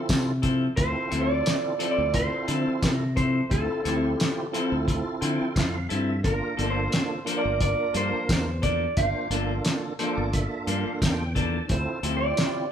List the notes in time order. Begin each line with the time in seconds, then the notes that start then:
Already playing: C4 E4 F4 A4
0.09 C3, kick, snare, closed hi-hat, tambourine
0.42 F3 C4 E4 A4, kick, closed hi-hat
0.76 D2 C4 E4 F4 A4 C5, kick, closed hi-hat
1.10 D2 F3 C4 E4 F4 A4, closed hi-hat
1.22 D5
1.46 snare, closed hi-hat, tambourine
1.78 F3 C4 E4 F4 A4, closed hi-hat
1.91 D5
1.98 D2
2.14 C5, kick, closed hi-hat
2.48 D3 F3 C4 E4 A4, closed hi-hat
2.67 muted fingered electric bass stroke
2.83 C3, kick, snare, closed hi-hat, tambourine
2.89 A#4
3.16 F3 C4 E4 A4 C5, kick, closed hi-hat
3.49 D2 C4 E4 F4 A4, kick, closed hi-hat
3.84 D2 F3 C4 E4 F4 G4 A4, closed hi-hat
4.20 snare, closed hi-hat, tambourine
4.52 F3 C4 E4 F4 A4, closed hi-hat
4.72 D2
4.88 kick, closed hi-hat
5.21 D3 F3 C4 E4 A4 G5, closed hi-hat
5.41 muted fingered electric bass stroke
5.55 F2 F5, kick, snare, closed hi-hat, tambourine
5.89 G2 F3 C4 E4 A4 E5, closed hi-hat
6.23 G1 A#3 D4 F4 A#4, kick, closed hi-hat
6.56 G1 F3 A#3 D4 F4 A4, closed hi-hat
6.70 C5
6.92 snare, closed hi-hat, tambourine
7.25 F3 A#3 D4 F4 A4 A#4, closed hi-hat
7.38 D5
7.45 G1
7.61 D5, kick, closed hi-hat
7.94 G2 F3 A#3 D4 A4 C5, closed hi-hat
8.13 muted fingered electric bass stroke
8.29 E2, kick, snare, closed hi-hat, tambourine
8.62 F3 A#3 D4 A4 D5, kick, closed hi-hat
8.97 G1 A#3 D4 F4 C5 F5, kick, closed hi-hat
9.30 G1 F3 A#3 D4 F4 A4, closed hi-hat
9.65 snare, closed hi-hat, tambourine
9.99 F3 A#3 D4 F4 A4 C5, closed hi-hat
10.17 G1 D5
10.33 E5, kick, closed hi-hat
10.67 G2 F3 A#3 D4 A4 F5, closed hi-hat
10.85 muted fingered electric bass stroke
11.01 E2 G5, kick, snare, closed hi-hat, tambourine
11.35 F3 A#3 D4 A4 A5, kick, closed hi-hat
11.68 D2 C4 E4 F4 A4 C5, kick, closed hi-hat
12.03 D2 F3 C4 E4 F4 G4 A4, closed hi-hat
12.17 D5
12.37 snare, closed hi-hat, tambourine